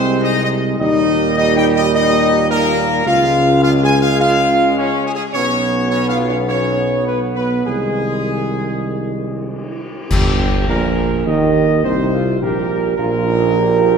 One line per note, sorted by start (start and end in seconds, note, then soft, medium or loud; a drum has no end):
0.00 0.75 C2 loud
0.00 0.80 C3 loud
0.00 0.80 G#3 loud
0.00 0.19 C4 loud
0.00 0.19 C5 loud
0.21 0.39 D#4 loud
0.21 0.41 D#5 loud
0.43 0.51 D#4 loud
0.43 0.47 D#5 loud
0.78 3.02 D#2 loud
0.78 3.05 A#2 loud
0.78 3.01 G3 loud
0.78 1.32 D#4 loud
0.78 1.33 D#5 loud
1.37 1.54 D#4 loud
1.37 1.54 D#5 loud
1.56 1.73 G4 loud
1.56 1.65 G5 loud
1.75 1.84 D#4 loud
1.75 1.93 D#5 loud
1.94 2.47 D#4 loud
1.94 2.46 D#5 loud
2.50 3.02 A#3 loud
2.50 3.02 A#4 loud
3.05 5.01 C#2 loud
3.05 5.18 C#3 loud
3.05 5.18 G#3 loud
3.05 3.58 F4 loud
3.05 3.58 F5 loud
3.62 3.71 F4 loud
3.62 3.71 F5 loud
3.82 3.99 G#4 loud
3.82 4.00 G#5 loud
4.01 4.10 F4 loud
4.01 4.18 F5 loud
4.20 4.73 F4 loud
4.20 4.72 F5 loud
4.77 5.03 C#4 loud
4.77 5.05 C#5 loud
5.05 5.15 G#3 loud
5.05 5.09 G#4 loud
5.14 5.24 G#3 loud
5.14 5.23 G#4 loud
5.32 7.62 B1 loud
5.32 7.63 F#3 loud
5.32 7.63 B3 loud
5.32 5.86 C#4 loud
5.32 5.85 C#5 loud
5.89 6.08 C#4 loud
5.89 6.07 C#5 loud
6.08 6.27 F4 loud
6.08 6.17 F5 loud
6.28 6.47 C#4 loud
6.28 6.36 C#5 loud
6.48 7.02 C#4 medium
6.48 7.02 C#5 loud
7.06 7.34 B3 medium
7.06 7.20 B4 loud
7.35 7.64 B3 medium
7.35 7.64 B4 loud
7.66 9.76 C2 medium
7.66 9.81 D#3 medium
7.66 9.80 G#3 medium
7.66 9.77 G#3 medium
7.66 9.76 G#4 loud
10.09 10.65 G1 loud
10.09 10.65 G2 loud
10.09 10.64 G4 loud
10.09 concert bass drum loud
10.09 crash medium
10.68 11.22 A#1 loud
10.68 11.22 A#2 loud
10.68 11.22 A#4 loud
11.26 11.86 D#2 loud
11.26 11.80 D#3 loud
11.26 11.80 G4 medium
11.26 11.84 D#5 loud
11.84 12.41 C2 loud
11.84 12.37 C3 loud
11.84 12.11 D#4 medium
11.84 12.37 C5 medium
12.13 12.39 F4 loud
12.41 12.94 A#1 loud
12.41 12.97 A#2 medium
12.41 12.94 G4 loud
12.41 12.95 A#4 loud
12.96 13.98 A#1 loud
12.96 13.98 A#2 loud
12.96 13.25 F4 medium
12.96 13.98 A#4 loud
13.27 13.53 D#4 medium
13.57 13.98 G4 loud